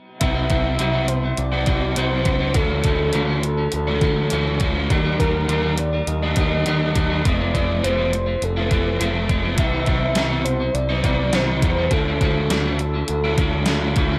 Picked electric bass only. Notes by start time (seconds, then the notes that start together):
0.21 C2
0.50 C2
0.80 C2
1.38 C2
1.68 C2
1.97 C2
2.26 C#2
2.54 D2
2.84 D2
3.15 D2
3.74 D2
4.01 D2
4.32 D2
4.61 D2
4.90 D#2
5.20 D#2
5.48 D#2
6.07 D#2
6.37 D#2
6.66 D#2
6.95 D#2
7.26 F1
7.54 F1
7.84 F1
8.42 F1
8.71 F1
9.00 F1
9.30 F1
9.58 C2
9.88 C2
10.16 C2
10.74 C2
11.04 C2
11.33 C2
11.62 E2
11.91 D2
12.22 D2
12.50 D2
13.09 D2
13.38 D2
13.68 D2
13.96 D2